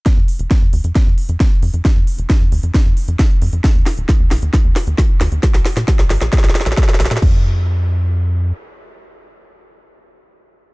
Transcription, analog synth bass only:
X:1
M:4/4
L:1/16
Q:1/4=134
K:Eb
V:1 name="Analog synth bass" clef=bass
z F,, z F,,, z F,, E,, F,, z F,, z F,, z2 F,, F,, | z F,, z F,,, z F,, E,, F,, z F,, z F,, z2 F,, F,, | z E,, z E,,, z E,, B,,, E,, z E,, z E,, z2 E,, E,, | z B,,, z B,, z B,,, A,,, B,,, z B,,, z B,,, z2 B,,, B,, |
F,,12 z4 | z16 |]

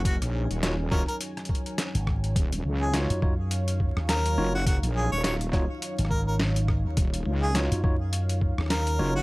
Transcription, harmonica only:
X:1
M:4/4
L:1/16
Q:"Swing 16ths" 1/4=104
K:Ebm
V:1 name="Harmonica"
G z4 z B B z8 | z3 A z8 B3 G | G z A d d z4 z B B z4 | z3 A z8 B3 G |]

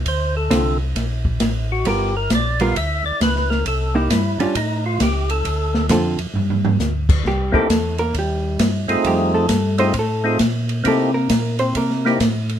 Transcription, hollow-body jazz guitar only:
X:1
M:4/4
L:1/8
Q:"Swing" 1/4=134
K:Dm
V:1 name="Hollow-body jazz guitar"
z2 [D,A,CF] z4 z | [G,=B,F^A] z2 [G,B,FA] z4 | z [B,^DE] z [G,_DF] z4 | z2 [D,CFA] z4 z |
[G,G] [A,A]2 [B,B] [G,G]2 z2 | [G,G] [A,A]2 [Cc] [A,A]2 z2 | [A,A] [B,B]2 [Cc] [B,B]2 z2 |]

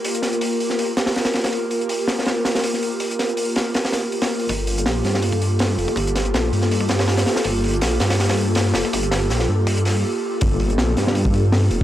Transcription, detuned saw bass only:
X:1
M:4/4
L:1/8
Q:"Swing 16ths" 1/4=162
K:Gm
V:1 name="Detuned saw bass" clef=bass
z8 | z8 | z8 | G,,,2 B,,, G,,4 F,,, |
G,,,2 B,,, G,,4 z | G,,,2 B,,, G,,4 F,,, | G,,,2 B,,, G,,3 z2 | G,,,2 B,,, G,,4 F,,, |]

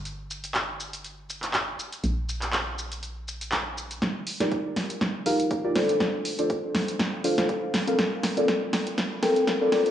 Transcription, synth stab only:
X:1
M:4/4
L:1/16
Q:"Swing 16ths" 1/4=121
K:Gm
V:1 name="Synth stab"
z16 | z16 | z3 [EFGBd]6- [EFGBd] [EFGBf]3 [EFGBd] [DFAcd]2- | [DFAcd]3 [DFAcd]6- [DFAcd] [DFAcf] [DFAcf]3 z [CFABf]- |
[CFABf]3 [CFABd]6- [CFABd] [CFABg]3 [CFABd] [CFABd]2 |]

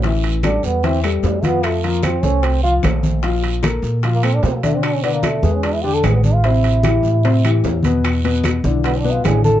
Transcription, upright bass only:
X:1
M:4/4
L:1/8
Q:1/4=150
K:Am
V:1 name="Upright bass" clef=bass
A,,,3 E,,3 F,,2- | F,,3 C,,3 _B,,,2- | _B,,,3 _B,,3 =B,,2- | B,,3 E,,3 A,,,2- |
A,,,3 A,,3 E,,2- | E,,3 B,,,3 A,,,2 |]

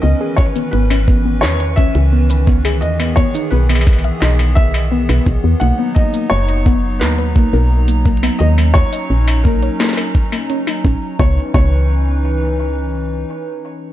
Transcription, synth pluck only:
X:1
M:4/4
L:1/16
Q:1/4=86
K:C#dor
V:1 name="Synth pluck"
B, G z B, B, C B, B, z c C z B, B B, G | z B, B, D B, B, z e D z B, d B, B z B, | A, B, A, A, z d B, z A, B A, A z A, A, B, | A, A, z d C z A, c A, A z A, C D C z |
B, z B, z12 z |]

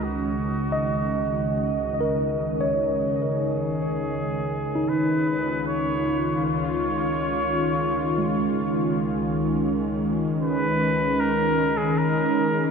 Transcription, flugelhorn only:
X:1
M:4/4
L:1/16
Q:1/4=76
K:Dbmix
V:1 name="Flugelhorn"
G12 z4 | A8 c4 d4 | d12- d2 z2 | z4 c4 B3 A B4 |]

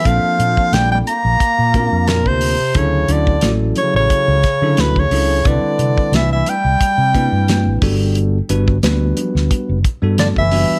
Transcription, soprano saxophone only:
X:1
M:4/4
L:1/16
Q:"Swing 16ths" 1/4=89
K:Clyd
V:1 name="Soprano saxophone"
=f4 g g _b6 _B c3 | ^c2 d2 z2 c c4- c B c3 | d4 e e g8 z2 | z12 d e3 |]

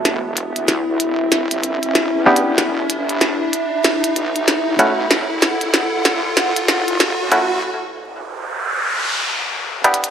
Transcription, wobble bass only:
X:1
M:4/4
L:1/16
Q:"Swing 16ths" 1/4=95
K:Edor
V:1 name="Wobble bass" clef=bass
E,,,3 D,,3 E,,,3 G,,,2 E,,,2 E,,2 E,,,- | E,,,2 G,,,4 z4 B,,,3 A,,, B,,,2 | F,,,3 E,,,3 F,,,3 A,,,2 F,,,2 F,,2 F,,, | z16 |]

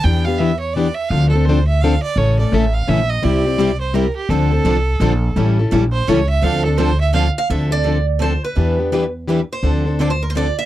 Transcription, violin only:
X:1
M:3/4
L:1/8
Q:"Swing" 1/4=169
K:Dm
V:1 name="Violin"
g f e ^c d e | f A c e f d | ^c d e f e _e | d3 c B G |
A6 | z3 c ^c e | f A c e f z | z6 |
z6 | z6 |]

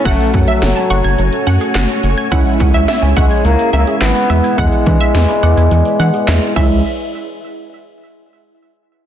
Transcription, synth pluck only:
X:1
M:4/4
L:1/16
Q:1/4=106
K:C#m
V:1 name="Synth pluck"
f2 z e2 z f z3 f2 z4 | f2 z e e2 f z3 e2 z2 e z | f2 z e2 z f z3 f2 z2 e2 | z16 |]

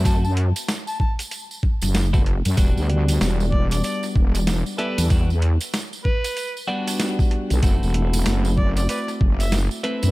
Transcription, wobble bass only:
X:1
M:4/4
L:1/16
Q:"Swing 16ths" 1/4=95
K:Em
V:1 name="Wobble bass" clef=bass
F,,3 z8 F,,,4 F,, | E,,, D,,3 E,,,4 z2 E,,,3 z2 E,,- | E,,3 z12 B,,, | F,,, E,,,3 F,,,4 z2 F,,,3 z2 F,, |]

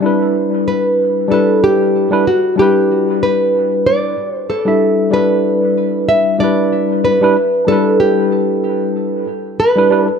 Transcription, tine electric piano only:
X:1
M:4/4
L:1/16
Q:"Swing 16ths" 1/4=94
K:G
V:1 name="Tine electric piano"
[G,DEB]8 [G,DEB]4- [G,DEB] [G,DEB] z2 | [G,DEB]8- [G,DEB]2 z3 [G,DEe]3 | [G,DEB]8 [G,DEB]4- [G,DEB] [G,DEB] z2 | [G,DEB]8- [G,DEB]2 z3 [G,DEB] [G,DEB] z |]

